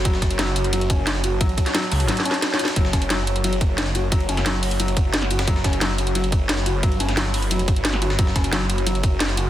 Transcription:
Already playing: F#4 C#5
0.05 F#1 F#3 A5, kick, closed hi-hat, ride
0.14 snare
0.22 kick, snare, closed hi-hat, ride
0.31 closed hi-hat, ride
0.39 F#3, snare, closed hi-hat, ride
0.47 snare
0.56 closed hi-hat, ride
0.64 closed hi-hat
0.73 F#3, closed hi-hat, ride
0.81 closed hi-hat
0.90 C#4, kick, closed hi-hat, ride
1.07 snare, closed hi-hat, ride
1.15 snare
1.24 F#4, closed hi-hat, ride
1.41 A1 F#3, kick, closed hi-hat, ride
1.49 ride
1.58 kick, closed hi-hat, ride
1.66 snare, closed hi-hat
1.74 F#3, snare, closed hi-hat, ride
1.83 snare
1.91 C#2, closed hi-hat, open hi-hat
2.00 closed hi-hat
2.08 F#3, snare, closed hi-hat, ride
2.17 snare, closed hi-hat, ride
2.25 C#4, closed hi-hat, ride
2.31 snare, closed hi-hat
2.42 snare, closed hi-hat, ride
2.51 snare
2.54 snare
2.59 F#4, closed hi-hat, ride
2.65 snare
2.68 snare, ride
2.76 F#1 F#3 F#5, kick, closed hi-hat, ride
2.85 snare
2.93 C#4, kick, snare, closed hi-hat, ride
3.02 closed hi-hat, ride
3.10 F#3, snare, closed hi-hat, ride
3.19 snare
3.27 closed hi-hat, ride
3.36 closed hi-hat
3.44 F#3, closed hi-hat, ride
3.53 closed hi-hat
3.61 kick, closed hi-hat, ride
3.78 snare, closed hi-hat, ride
3.86 snare
3.95 F#4, closed hi-hat, ride
4.12 F#1 F#3, kick, closed hi-hat, ride
4.20 ride
4.29 C#4, closed hi-hat, ride
4.37 snare, closed hi-hat
4.46 F#3, snare, closed hi-hat, ride
4.54 snare
4.63 closed hi-hat, open hi-hat
4.71 closed hi-hat
4.80 F#3, closed hi-hat, ride
4.88 closed hi-hat, ride
4.97 kick, closed hi-hat, ride
5.14 snare, closed hi-hat, ride
5.22 snare
5.30 F#4, closed hi-hat, ride
5.39 snare, ride
5.47 F#1 F#3 B5, kick, closed hi-hat, ride
5.56 snare
5.64 C#4, kick, snare, closed hi-hat, ride
5.73 closed hi-hat, ride
5.81 F#3, snare, closed hi-hat, ride
5.90 snare
5.98 closed hi-hat, ride
6.07 closed hi-hat
6.15 F#3, closed hi-hat, ride
6.24 closed hi-hat
6.32 kick, closed hi-hat, ride
6.49 snare, closed hi-hat, ride
6.58 snare
6.66 F#4, closed hi-hat, ride
6.83 G1 F#3, kick, closed hi-hat, ride
6.92 ride
7.00 C#4, closed hi-hat, ride
7.09 snare, closed hi-hat
7.17 F#3, snare, closed hi-hat, ride
7.26 snare
7.34 closed hi-hat, open hi-hat
7.42 F#1, closed hi-hat
7.51 F#3, closed hi-hat, ride
7.59 closed hi-hat, ride
7.68 G1, kick, closed hi-hat, ride
7.76 closed hi-hat
7.85 snare, closed hi-hat, ride
7.93 snare
8.02 F#4, closed hi-hat, ride
8.10 snare
8.19 F#1 F#3 F#5, kick, closed hi-hat, ride
8.27 snare
8.36 C#4, kick, snare, closed hi-hat, ride
8.44 closed hi-hat, ride
8.53 F#3, snare, closed hi-hat, ride
8.61 snare
8.70 closed hi-hat, ride
8.78 closed hi-hat
8.86 F#3, closed hi-hat, ride
8.95 closed hi-hat
9.03 kick, closed hi-hat, ride
9.20 snare, closed hi-hat, ride
9.29 snare
9.37 F#4, closed hi-hat, ride

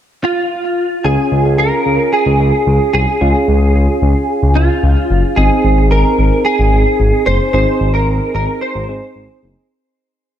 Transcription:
0.24 F4
1.04 C#2 C#4 F4 G#4
1.32 C#2
1.45 C#2
1.58 C#2 A#4
1.86 C#2
2.13 G#4
2.26 C#2
2.40 C#2
2.67 C#2
2.93 C2 G#4
3.21 C#2 C#4 F4 G#4
3.48 C#2
3.62 C#2
3.75 C#2
4.02 C#2
4.43 C#2
4.56 C#2 F4
4.83 C#2
5.10 F#1
5.36 G#1 C4 D#4 G#4
5.64 G#1
5.78 G#1
5.91 G#1 A#4
6.19 G#1
6.45 G#4
6.59 G#1
6.73 G#1
7.00 G#1
7.26 F#1 C5
7.53 G#1 C4 D#4 G#4 C5
7.81 G#1
7.94 G#1 A#4
8.08 G#1
8.35 G#1 A#4
8.61 C5
8.75 G#1
8.89 G#1 C4 D#4 G#4
9.16 G#1
9.43 F#1

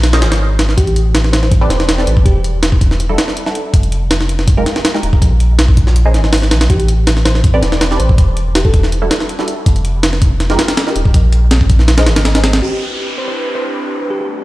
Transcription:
Already playing: A#1
0.03 snare, closed hi-hat
0.13 C#4 G#4 A#4 C5 D#5, snare, closed hi-hat
0.22 G#1, snare, closed hi-hat
0.32 snare, closed hi-hat
0.59 snare, closed hi-hat
0.69 snare
0.77 A1 G4, kick, closed hi-hat
0.87 closed hi-hat
0.96 closed hi-hat
1.15 snare, closed hi-hat
1.24 snare
1.33 C5, snare, closed hi-hat
1.43 C5, snare
1.52 kick, closed hi-hat
1.61 C4 G4 A4 B4 D5
1.70 E1 C5, snare, closed hi-hat
1.80 snare
1.89 snare, closed hi-hat
1.98 C4 G4 A4 B4 D5, snare
2.07 A1, closed hi-hat
2.17 kick
2.26 E1 G4, kick, closed hi-hat
2.35 G4
2.44 closed hi-hat
2.63 snare, closed hi-hat
2.72 kick
2.81 kick, closed hi-hat
2.91 snare
3.00 closed hi-hat
3.09 G3 D4 E4 F#4 A4
3.18 snare, closed hi-hat
3.28 snare
3.37 closed hi-hat
3.46 G3 D4 E4 F#4 A4, snare
3.55 closed hi-hat
3.74 F1, kick, closed hi-hat
3.83 closed hi-hat
3.92 closed hi-hat
4.11 snare, closed hi-hat
4.21 snare
4.29 closed hi-hat
4.39 snare
4.48 kick, closed hi-hat
4.57 G#3 D#4 F4 G4 A#4
4.66 snare, closed hi-hat
4.76 snare
4.85 snare, closed hi-hat
4.94 G#3 D#4 F4 G4 A#4, snare
5.03 D#1, closed hi-hat
5.13 kick
5.22 A#1, kick, closed hi-hat
5.40 closed hi-hat
5.59 snare, closed hi-hat
5.68 kick
5.77 kick, closed hi-hat
5.87 snare
5.96 closed hi-hat
6.05 C#4 G#4 A#4 C5 D#5
6.14 G#1, snare, closed hi-hat
6.24 snare
6.33 snare, open hi-hat
6.42 snare
6.51 A#1, snare, closed hi-hat
6.61 snare, closed hi-hat
6.70 A1 G4, kick, closed hi-hat
6.80 closed hi-hat
6.88 closed hi-hat
7.07 snare, closed hi-hat
7.17 snare
7.25 C5, snare, closed hi-hat
7.35 C5, snare
7.44 kick, closed hi-hat
7.54 C4 G4 A4 B4 D5
7.62 E1, snare, closed hi-hat
7.72 snare
7.81 snare, closed hi-hat
7.91 C4 G4 A4 B4 D5, snare
7.99 A1 C5, closed hi-hat
8.09 kick
8.18 E1, kick, closed hi-hat
8.37 closed hi-hat
8.55 G4, snare, closed hi-hat
8.65 A4, kick
8.73 A4, kick, closed hi-hat
8.83 snare
8.92 closed hi-hat
9.02 G3 D4 E4 F#4 A4
9.11 snare, closed hi-hat
9.20 snare
9.29 closed hi-hat
9.39 G3 D4 E4 F#4 A4, snare
9.48 closed hi-hat
9.66 F1, kick, closed hi-hat
9.76 closed hi-hat
9.85 closed hi-hat
10.03 snare, closed hi-hat
10.13 snare
10.22 kick, closed hi-hat
10.40 snare, closed hi-hat
10.50 G#3 D#4 F4 G4 A#4, snare
10.59 snare, closed hi-hat
10.68 snare, closed hi-hat
10.77 snare, closed hi-hat
10.87 G#3 D#4 F4 G4 A#4, snare
10.96 D#1, closed hi-hat
11.05 kick
11.14 A#1, kick, closed hi-hat
11.33 closed hi-hat
11.51 snare, closed hi-hat
11.61 kick
11.70 kick, closed hi-hat
11.79 snare
11.88 snare, closed hi-hat
11.98 C#4 G#4 A#4 C5 D#5, snare, closed hi-hat
12.06 G#1, snare, closed hi-hat
12.16 snare, closed hi-hat
12.25 snare, closed hi-hat
12.35 C#4 G#4 A#4 C5 D#5, snare, closed hi-hat
12.44 snare, closed hi-hat
12.53 snare, closed hi-hat
12.62 C4 D4 E4 G4 B4, downlifter
13.18 C5
13.28 C5
13.55 C5
14.10 G3 A3 B3 D4 F#4 G4
14.21 G4

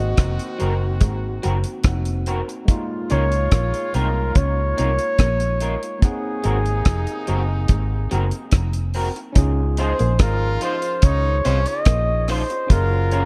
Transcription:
Already playing: G#1 D#3 A#3 C4 D#4 F#4 D#5
0.17 F1 F3, kick, cross-stick, closed hi-hat
0.39 closed hi-hat
0.58 F#1 F#3 C4 F#4 A#4, closed hi-hat
0.81 muted clean electric guitar stroke
1.01 G#1 G#3, kick, closed hi-hat
1.43 F#1 F#3 C4 F#4 A#4, closed hi-hat
1.64 closed hi-hat
1.84 F1 F3 A#3 C4 D#4 F#5, kick, cross-stick, closed hi-hat
2.05 closed hi-hat
2.26 C4 F#4 A#4, closed hi-hat
2.48 muted clean electric guitar stroke, closed hi-hat
2.65 A#2 G#3 A#3 F4, kick, closed hi-hat
2.69 D#4 F4
3.10 C#2 C#4 D#4 F4 A#4 C#5, closed hi-hat
3.32 closed hi-hat
3.51 A#1 A#3, kick, cross-stick, closed hi-hat
3.74 closed hi-hat
3.94 C2 C4 D#4 F4 A#4, closed hi-hat
4.16 muted clean electric guitar stroke
4.35 C#2 C#4 C#5, kick, closed hi-hat
4.77 C2 C4 D#4 F4 A#4, closed hi-hat
4.99 closed hi-hat
5.19 A#1 A#3, kick, cross-stick, closed hi-hat
5.40 closed hi-hat
5.60 D#4 F4 A#4, closed hi-hat
5.83 closed hi-hat
5.99 A#3 C4 D#4, kick, closed hi-hat
6.03 C3 A#3 D#4 G#4 F#5
6.44 G#1 G#3 C4 F#4 A#4, closed hi-hat
6.66 closed hi-hat
6.85 F1 F3, kick, cross-stick, closed hi-hat
7.07 closed hi-hat
7.27 F#1 F#3 C4 F#4 A#4, closed hi-hat
7.49 muted clean electric guitar stroke
7.68 G#1 G#3, kick, closed hi-hat
8.11 F#1 F#3 C4 F#4 A#4, closed hi-hat
8.31 closed hi-hat
8.51 F1 F3, kick, cross-stick, closed hi-hat
8.73 closed hi-hat
8.94 C4 F#4 A#4, open hi-hat
9.16 muted clean electric guitar stroke, closed hi-hat
9.33 C#4 D#4, kick, closed hi-hat
9.37 C#2 F4 G#4
9.77 G#3 D#4 F4 G#4 C5, closed hi-hat
9.99 A#1 A#3, closed hi-hat
10.19 G#1 F3 G#3 F4 A#4, kick, cross-stick, closed hi-hat
10.61 D#4 F4 C5, closed hi-hat
10.82 closed hi-hat
11.02 C#2 D#3 C#4 D#4 C#5, kick, closed hi-hat
11.44 C2 C#3 C4 C#4 D#4 F4 C5, closed hi-hat
11.66 D#5, closed hi-hat
11.85 A#1 A#3, kick, cross-stick, closed hi-hat
12.28 D#4 F4 C5, cross-stick, open hi-hat
12.50 muted clean electric guitar stroke, closed hi-hat
12.67 F#1 F#3 C#4 F4 G#4, kick, closed hi-hat
12.72 A#4
13.11 C#4 F4 A#4, closed hi-hat

